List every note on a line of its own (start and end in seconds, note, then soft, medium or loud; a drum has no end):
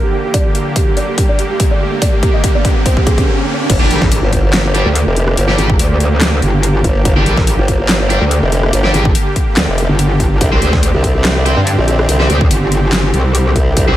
0.00 3.66 D3 medium
0.00 3.66 A#3 medium
0.00 3.66 G4 medium
0.00 0.11 G4 medium
0.00 riser medium
0.13 0.22 G4 medium
0.24 0.33 G4 medium
0.34 0.44 D5 loud
0.34 kick loud
0.34 closed hi-hat medium
0.45 0.54 G4 medium
0.55 0.65 G4 medium
0.55 closed hi-hat soft
0.76 0.85 G4 medium
0.76 kick loud
0.76 closed hi-hat medium
0.87 0.96 G4 medium
0.97 1.06 D5 medium
0.97 closed hi-hat soft
1.08 1.16 G4 medium
1.18 1.27 G4 medium
1.18 kick loud
1.18 closed hi-hat medium
1.29 1.37 D5 medium
1.39 1.48 G4 medium
1.39 closed hi-hat medium
1.50 1.58 G4 medium
1.60 1.69 G4 medium
1.60 kick loud
1.60 closed hi-hat medium
1.71 1.79 D5 loud
1.81 1.90 G4 medium
1.92 2.00 G4 medium
2.02 2.11 D5 medium
2.02 kick loud
2.02 closed hi-hat medium
2.13 2.21 G4 medium
2.23 2.32 G4 medium
2.23 kick loud
2.23 closed hi-hat soft
2.34 2.42 D#5 medium
2.44 2.53 G4 medium
2.44 kick loud
2.44 closed hi-hat medium
2.55 2.63 D5 medium
2.65 2.74 G4 medium
2.65 kick loud
2.65 closed hi-hat medium
2.76 2.84 G4 medium
2.86 2.95 C5 medium
2.86 kick loud
2.86 closed hi-hat medium
2.97 3.05 G4 medium
2.97 kick medium
3.07 3.16 G#4 medium
3.07 kick loud
3.07 closed hi-hat soft
3.18 3.26 G4 medium
3.18 kick loud
3.18 closed hi-hat soft
3.70 3.79 G1 medium
3.70 13.97 D3 medium
3.70 10.37 A#3 medium
3.70 13.97 G4 medium
3.70 kick loud
3.70 closed hi-hat medium
3.70 crash loud
3.70 impact medium
3.80 3.89 G1 loud
3.80 4.00 G3 medium
3.80 4.00 D4 medium
3.80 4.00 G4 loud
3.91 4.21 A#1 medium
3.91 closed hi-hat medium
4.02 kick loud
4.02 snare soft
4.12 closed hi-hat medium
4.23 4.84 G1 medium
4.33 kick medium
4.33 closed hi-hat medium
4.54 snare loud
4.54 clap medium
4.54 closed hi-hat medium
4.74 4.87 G3 medium
4.74 4.87 D4 medium
4.74 4.87 G4 loud
4.74 closed hi-hat medium
4.86 5.05 D2 loud
4.95 closed hi-hat medium
5.07 5.36 F1 loud
5.16 closed hi-hat medium
5.28 cross-stick medium
5.37 5.57 G1 loud
5.37 closed hi-hat medium
5.48 5.68 G3 medium
5.48 5.68 D4 medium
5.48 5.68 G4 medium
5.48 snare soft
5.58 5.78 G#1 loud
5.58 closed hi-hat medium
5.70 kick loud
5.79 6.41 D2 loud
5.79 closed hi-hat medium
6.00 closed hi-hat medium
6.21 snare loud
6.21 clap medium
6.21 closed hi-hat medium
6.42 6.83 G1 loud
6.42 closed hi-hat medium
6.63 closed hi-hat medium
6.84 7.04 G1 loud
6.84 kick medium
6.84 closed hi-hat medium
7.05 7.15 G1 medium
7.05 kick loud
7.05 closed hi-hat medium
7.16 7.25 G1 medium
7.16 7.36 G3 medium
7.16 7.36 D4 medium
7.16 7.36 G4 medium
7.26 7.57 A#1 loud
7.26 closed hi-hat medium
7.37 kick loud
7.37 snare soft
7.47 closed hi-hat medium
7.58 8.20 G1 medium
7.68 kick medium
7.68 closed hi-hat medium
7.89 snare loud
7.89 clap medium
7.89 closed hi-hat medium
8.10 8.23 G3 medium
8.10 8.23 D4 medium
8.10 8.23 G4 loud
8.10 closed hi-hat medium
8.21 8.41 D2 medium
8.31 closed hi-hat medium
8.42 8.72 F1 medium
8.52 closed hi-hat medium
8.63 cross-stick medium
8.73 8.93 G1 loud
8.73 closed hi-hat medium
8.84 9.04 G3 medium
8.84 9.04 D4 medium
8.84 9.04 G4 medium
8.84 snare soft
8.94 9.13 G#1 loud
8.94 closed hi-hat medium
9.05 kick loud
9.15 closed hi-hat medium
9.36 kick medium
9.36 closed hi-hat soft
9.57 9.66 D2 medium
9.57 snare loud
9.57 clap medium
9.57 closed hi-hat medium
9.68 9.87 F1 medium
9.78 closed hi-hat soft
9.89 10.39 G1 loud
9.99 closed hi-hat medium
10.20 kick medium
10.20 closed hi-hat soft
10.41 10.50 C2 loud
10.41 13.73 C4 medium
10.41 kick loud
10.41 closed hi-hat medium
10.52 10.60 C2 medium
10.52 10.72 C4 medium
10.52 10.72 G4 medium
10.52 10.72 C5 medium
10.62 10.92 D2 loud
10.62 closed hi-hat medium
10.73 kick loud
10.73 snare soft
10.83 closed hi-hat medium
10.94 11.55 C2 medium
11.04 kick medium
11.04 closed hi-hat soft
11.25 snare loud
11.25 clap medium
11.25 closed hi-hat medium
11.46 11.59 C4 medium
11.46 11.59 G4 medium
11.46 11.59 C5 loud
11.46 closed hi-hat soft
11.57 11.76 G2 loud
11.67 closed hi-hat medium
11.78 12.07 A#1 loud
11.88 closed hi-hat soft
11.99 cross-stick medium
12.09 12.28 C2 loud
12.09 closed hi-hat medium
12.20 12.40 C4 medium
12.20 12.40 G4 medium
12.20 12.40 C5 medium
12.20 snare soft
12.30 12.49 D2 loud
12.30 closed hi-hat medium
12.41 kick loud
12.51 13.12 G1 loud
12.51 closed hi-hat medium
12.72 closed hi-hat medium
12.93 snare loud
12.93 clap medium
12.93 closed hi-hat medium
13.14 13.54 C2 loud
13.14 closed hi-hat soft
13.35 closed hi-hat medium
13.56 13.75 C2 loud
13.56 kick medium
13.56 closed hi-hat medium
13.77 13.86 C2 loud
13.77 13.97 D4 medium
13.77 kick loud
13.77 closed hi-hat medium
13.88 13.96 C2 loud
13.88 13.97 C4 medium
13.88 13.97 G4 medium
13.88 13.97 C5 medium